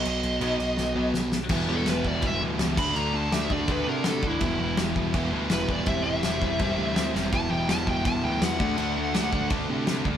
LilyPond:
<<
  \new Staff \with { instrumentName = "Lead electric guitar" } { \time 4/4 \key e \minor \tempo 4 = 165 dis''2. r4 | r8 a'8 b'8 d''8 e''8 r4 b''8 | ais''8 a''8 e''8 d''8 b'8 ais'8 a'8 e'8 | e'4 r2 b'8 d''8 |
e''8 e''2. r8 | a''8 g''8 a''8 g''8 a''8 g''8 fis''4~ | fis''2 r2 | }
  \new Staff \with { instrumentName = "Distorted electric guitar" } { \time 4/4 \key e \minor r4 <b, fis b dis'>8 r4 <b, fis b dis'>8 r4 | <e g b e'>8 <e g b e'>8 <e g b e'>8 <e g b e'>8 <e g b e'>8 <e g b e'>8 <e g b e'>8 <d a d' fis'>8 | <d a d' fis'>8 <d a d' fis'>8 <d a d' fis'>8 <d a d' fis'>8 <d a d' fis'>8 <d a d' fis'>8 <d a d' fis'>8 <d a d' fis'>8 | <e g b e'>8 <e g b e'>8 <e g b e'>8 <e g b e'>8 <e g b e'>8 <e g b e'>8 <e g b e'>8 <e g b e'>8 |
<e g c' e'>8 <e g c' e'>8 <e g c' e'>8 <e g c' e'>8 <e g c' e'>8 <e g c' e'>8 <e g c' e'>8 <e g c' e'>8 | <e g b e'>8 <e g b e'>8 <e g b e'>8 <e g b e'>8 <e g b e'>8 <e g b e'>8 <e g b e'>8 <d a d' fis'>8 | <d a d' fis'>8 <d a d' fis'>8 <d a d' fis'>8 <d a d' fis'>8 <d a d' fis'>8 <d a d' fis'>8 <d a d' fis'>8 <d a d' fis'>8 | }
  \new Staff \with { instrumentName = "Distorted electric guitar" } { \clef bass \time 4/4 \key e \minor <b, fis b>4 <b, fis b>2~ <b, fis b>8 r8 | <e, b, e>2 <e, b, e>4. <d a d'>8~ | <d a d'>4. <d a d'>2 r8 | <e, b, e>2 <e, b, e>2 |
<c g c'>2 <c g c'>2 | <e, b, e>2 <e, b, e>4. <d a d'>8~ | <d a d'>4. <d a d'>2 r8 | }
  \new Staff \with { instrumentName = "Overdriven electric guitar" } { \clef bass \time 4/4 \key e \minor r4 <b, fis b>8 r4 <b, fis b>8 r4 | <e, b, e>8 <e, b, e>8 <e, b, e>8 <e, b, e>8 <e, b, e>8 <e, b, e>8 <e, b, e>8 <d a d'>8 | <d a d'>8 <d a d'>8 <d a d'>8 <d a d'>8 <d a d'>8 <d a d'>8 <d a d'>8 <d a d'>8 | <e, b, e>8 <e, b, e>8 <e, b, e>8 <e, b, e>8 <e, b, e>8 <e, b, e>8 <e, b, e>8 <e, b, e>8 |
<c g c'>8 <c g c'>8 <c g c'>8 <c g c'>8 <c g c'>8 <c g c'>8 <c g c'>8 <c g c'>8 | <e, b, e>8 <e, b, e>8 <e, b, e>8 <e, b, e>8 <e, b, e>8 <e, b, e>8 <e, b, e>8 <d a d'>8 | <d a d'>8 <d a d'>8 <d a d'>8 <d a d'>8 <d a d'>8 <d a d'>8 <d a d'>8 <d a d'>8 | }
  \new Staff \with { instrumentName = "Picked electric bass" } { \clef bass \time 4/4 \key e \minor b,,8 b,,8 b,,8 b,,8 b,,8 b,,8 b,,4 | e,,8 e,,8 e,,8 e,,8 e,,8 d,8 cis,8 d,8 | d,8 d,8 d,4 d,8 c8 c8 d,8 | e,,8 e,,8 e,,8 e,,8 e,,8 d,8 e,,8 e,,8 |
e,,8 e,,8 e,,4 e,,8 d,8 d,8 e,,8 | e,,8 e,,8 e,,8 e,,8 e,,8 d,8 e,8 d,8 | d,8 d,8 d,4 d,8 c8 c8 d,8 | }
  \new DrumStaff \with { instrumentName = "Drums" } \drummode { \time 4/4 cymc8 cymc8 cymc8 cymc8 sn4 sn8 sn8 | <cymc bd>4 <cymc sn>8 bd8 <cymc bd>4 <cymc sn>8 <cymc bd>8 | cymc4 <cymc sn>8 bd8 <cymc bd>4 <cymc sn>8 bd8 | <cymc bd>4 <cymc sn>8 bd8 <cymc bd>4 <cymc sn>8 bd8 |
<cymc bd>4 <cymc sn>8 bd8 <cymc bd>4 <cymc sn>8 sn8 | <cymc bd>4 <cymc sn>8 bd8 <cymc bd>4 <cymc sn>8 bd8 | cymc4 <cymc sn>8 bd8 <cymc bd>4 <cymc sn>8 bd8 | }
>>